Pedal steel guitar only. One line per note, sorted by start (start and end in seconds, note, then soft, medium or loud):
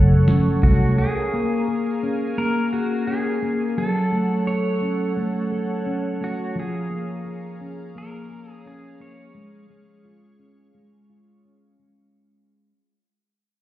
0.63 0.98 F#4 medium
0.98 2.42 G#4 medium
2.38 2.74 A#4 medium
2.73 3.07 F#4 medium
3.07 3.78 G#4 medium
3.78 4.49 A4 medium
4.47 5.13 C#5 medium
6.24 6.58 F#4 medium
6.59 8.01 G#4 medium
7.98 8.51 A#4 medium
8.51 8.67 G#4 medium
8.67 9.02 G#4 medium
9.01 11.41 C#5 medium